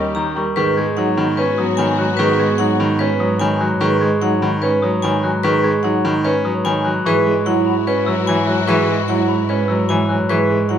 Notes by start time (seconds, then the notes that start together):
Already playing: D#2 G3 C#4 G4 D#5 C#6
0.15 D#3 A#5 G6
0.36 G3 A#4 C#6
0.56 G#2 D#3 B3 F#4 G#4 B4 C#6
0.77 G#3 G#6
0.97 F#3 D#4 F#5
1.17 D#3 B5
1.37 C#4 B4
1.58 F#3 D#6
1.77 D#3 C#5 G#5 B5
1.99 F#3 F#6
2.17 D#3 G#4 B4 C#6
2.39 G#3 G#6
2.58 F#3 D#4 F#5
2.80 D#3 B5
2.99 C#4 B4
3.20 F#3 D#6
3.40 D#3 C#5 G#5 B5
3.61 F#3 F#6
3.81 D#3 G#4 B4 C#6
4.01 G#3 G#6
4.22 F#3 D#4 F#5
4.42 D#3 B5
4.62 C#4 B4
4.82 F#3 D#6
5.02 D#3 C#5 G#5 B5
5.23 F#3 F#6
5.43 D#3 G#4 B4 C#6
5.64 G#3 G#6
5.83 F#3 D#4 F#5
6.05 D#3 B5
6.25 C#4 B4
6.45 F#3 D#6
6.64 D#3 C#5 G#5 B5
6.85 F#3 F#6
7.05 G#2 E3 E4 F#4 G#4 B4 C#6
7.26 G#3
7.46 F#3 E4 F#5
7.66 B5
7.87 C#4 B4
8.06 F#3 E6
8.26 E3 C#5 G#5 B5
8.47 F#3 F#6
8.67 E3 G#4 B4 C#6
8.89 G#3
9.08 F#3 E4 F#5
9.28 B5
9.49 C#4 B4
9.68 F#3 E6
9.89 E3 C#5 G#5 B5
10.09 F#3 F#6
10.29 E3 G#4 B4 C#6
10.50 G#3
10.69 F#3 E4 F#5